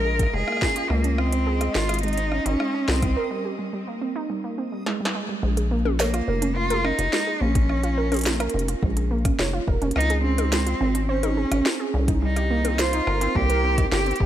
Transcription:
Already playing: A#1 A#4 D#5
0.05 G#4
0.19 G#3, kick, cross-stick, closed hi-hat
0.26 cross-stick
0.30 F1 G#3, cross-stick
0.34 G#4, cross-stick
0.41 cross-stick
0.44 cross-stick
0.48 A#3, cross-stick
0.52 cross-stick
0.57 cross-stick
0.62 C#4, kick, cross-stick, snare
0.66 cross-stick
0.71 cross-stick
0.76 F4, closed hi-hat
0.90 C#2 G#3 A#3, cross-stick
1.04 C#4, closed hi-hat
1.18 C4, cross-stick
1.33 C4, closed hi-hat
1.47 G#4
1.61 G#3, cross-stick, closed hi-hat
1.75 G#1 F4, snare
1.89 G#3, cross-stick, closed hi-hat
1.94 closed hi-hat
1.99 closed hi-hat
2.03 G#3 D#4, closed hi-hat
2.08 closed hi-hat
2.13 closed hi-hat
2.18 C4, closed hi-hat
2.32 C#4, cross-stick
2.46 G#1 C#4 D#4, closed hi-hat
2.60 G#3, cross-stick
2.74 C#4
2.88 C2 C4, snare
3.02 C4, kick, cross-stick, closed hi-hat
3.17 A#4
3.31 G3
3.45 G4
3.59 G3
3.73 G3
3.87 A#3
4.01 C4
4.16 D#4
4.30 G3
4.44 A#3
4.58 C4
4.72 G3
4.86 G#3, snare
5.01 G3
5.05 snare
5.15 G#3
5.29 G3
5.43 A#1 G#3
5.57 G#4, closed hi-hat
5.71 A#3
5.85 C#4, high tom
6.00 A#3 C#5, snare, shaker
6.14 F4, cross-stick, closed hi-hat
6.28 F1 A#4
6.42 C#4, closed hi-hat
6.56 A#3 F4
6.70 A#4, closed hi-hat, high tom
6.84 C#4 D#4, cross-stick
6.99 F1 F4, closed hi-hat
7.13 G#3, snare
7.27 G#4
7.41 A#1 A#3 C#4
7.55 C#4, kick, closed hi-hat
7.69 C#5, cross-stick
7.83 F4, closed hi-hat
7.98 A#4
8.12 C#4, closed hi-hat, high tom
8.14 closed hi-hat
8.16 closed hi-hat
8.19 closed hi-hat
8.21 closed hi-hat
8.24 A#3, snare, closed hi-hat, shaker
8.40 A#4, cross-stick, closed hi-hat
8.50 closed hi-hat
8.54 F1 C#4
8.59 closed hi-hat
8.68 F4, closed hi-hat
8.83 A#1 G#3, kick
8.97 G#4, closed hi-hat
9.11 A#3
9.25 C#4, kick, cross-stick, closed hi-hat
9.39 F1 C#5, snare
9.53 F4
9.67 F1 A#4, kick
9.82 F1 C#4, closed hi-hat
9.91 closed hi-hat
9.96 C#2 C4 D#4, cross-stick
10.01 closed hi-hat
10.10 G#4, closed hi-hat
10.24 C4 C#4
10.38 D#4, closed hi-hat, high tom
10.52 G#3, snare, shaker
10.67 F4, closed hi-hat
10.81 G#1 C4
10.95 C#4, closed hi-hat
11.09 C#4 C5
11.23 D#4, closed hi-hat, high tom
11.37 G#4
11.51 G#1 C#4, cross-stick, closed hi-hat
11.66 C4, snare
11.80 G#4
11.94 C2 C#4
12.08 D#4, kick, closed hi-hat
12.22 G3 D#4
12.36 G4, cross-stick, closed hi-hat
12.51 A#3
12.65 C4, closed hi-hat, high tom
12.79 F4 C5, snare, shaker
12.93 D#4, closed hi-hat
13.07 G1 A#4, cross-stick
13.21 C4, closed hi-hat
13.35 C2 A#3 G4, kick
13.50 A#4, closed hi-hat
13.64 C4
13.78 D#4, kick, closed hi-hat
13.92 G1 G4, cross-stick, snare
14.06 C4, closed hi-hat
14.11 closed hi-hat
14.16 closed hi-hat
14.20 G1 G4, kick

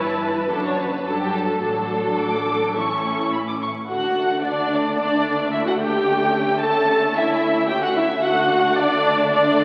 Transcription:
Already playing: G1 G2 E3 E4 B4 A5
0.48 F#1 F#2 F#3 D4 A4 A5
0.64 C#5
0.77 B4
1.04 G1 G2 F#3 D4 A4 A5
1.19 G4
1.32 A4
1.60 A1 A2 F#3 D4 A4 A5
2.19 D6
2.75 A1 A2 C#4 E4 C#6
3.32 B5
3.47 D6
3.61 C#6
3.88 D2 D3 A3 D4 F#4 F#5
4.43 D4 D5
4.98 D4 D5
5.52 E4 E5
5.65 F#4 F#5
5.79 G4 G5
6.06 C#4
6.60 A4 A5
7.15 E4 E5
7.68 G4 G5
7.82 F#4 F#5
7.96 E4 E5
8.22 D2 D3 A3 D4 F#4 F#5
8.76 D4 D5
9.29 D4 D5

